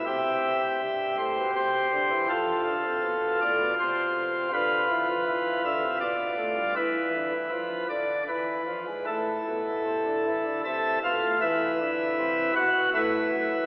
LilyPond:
<<
  \new Staff \with { instrumentName = "Pipe organ" } { \time 3/4 \key a \minor \tempo 4 = 80 << { e''4. c''8 c''4 | a'4. d''8 c''4 | b'4. e''8 d''4 | b'4. d''8 b'4 |
a'2 <a' e'' a''>8 <f' f''>8 | \key c \lydian <e' b' e''>4. <fis' fis''>8 <e' b' e''>4 | } \\ { g'2. | f'2. | f'2. | e'4 r2 |
e'2 r4 | e,8 r2 r8 | } >> }
  \new Staff \with { instrumentName = "Pipe organ" } { \clef bass \time 3/4 \key a \minor c4 g,8 a,16 b,16 c8 d16 e16 | f8 d16 c16 b,8 a,16 b,16 c4 | d8 e16 f16 e8 d16 c16 b,8 a,16 g,16 | e8 d16 e16 f8 d8 e8 f16 gis,16 |
a,8 b,8 c16 d16 e16 d16 c8 b,16 a,16 | \key c \lydian e8 d8 c8 b,8 a,8 fis,8 | }
>>